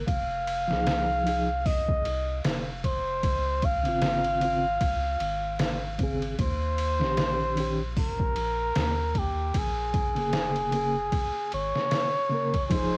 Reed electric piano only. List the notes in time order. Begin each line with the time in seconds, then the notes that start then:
0.68 F3 D#4
0.73 G#4
1.24 F3 D#4
1.29 G#4
3.83 C#3 C4
3.88 F4
4.40 C#3 C4
4.44 F4
5.99 C#3 C4
6.03 G#4
6.99 D#3 C#4
7.04 G4
7.55 D#3 C#4
7.60 G4
10.15 C#3 A#3
10.20 G#4
10.71 C#3 A#3
10.76 G#4
12.29 C#3 A#3
12.34 A#4
12.70 F3 D#4
12.74 G#4